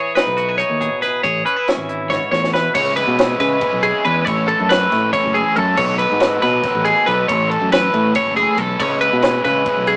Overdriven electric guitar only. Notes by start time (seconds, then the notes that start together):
2.75 C#3 G#3 C#4 E4 G#4
2.96 C#4 E4 G#4
3.18 G#3 C#4 E4 G#4
3.60 C#3 G#3 C#4 E4 G#4
3.82 C#4 E4 G#4
4.05 G#3 C#4 E4 G#4
4.26 A2 E3 A3 C#4 E4 A4
4.47 A3 C#4 E4 A4
4.69 A3 C#4 E4 A4
5.12 A2 E3 A3 C#4 E4 A4
5.33 A3 C#4 E4 A4
5.54 A3 C#4 E4 A4
5.75 B2 D#3 F#3 B3 D#4 A4
5.96 F#3 B3 D#4 A4
6.19 F#3 B3 D#4 A4
6.62 B2 D#3 F#3 B3 D#4 A4
6.85 F#3 B3 D#4 A4
7.06 F#3 B3 D#4 A4
7.29 A2 E3 A3 C#4 E4 A4
7.51 A3 C#4 E4 A4
7.71 A3 C#4 E4 A4
8.15 A2 E3 A3 C#4 E4 A4
8.38 A3 C#4 E4 A4
8.59 A3 C#4 E4 A4
8.80 C#3 G#3 C#4 E4 G#4
9.01 C#4 E4 G#4
9.22 G#3 C#4 E4 G#4
9.66 C#3 G#3 C#4 E4 G#4
9.87 C#4 E4 G#4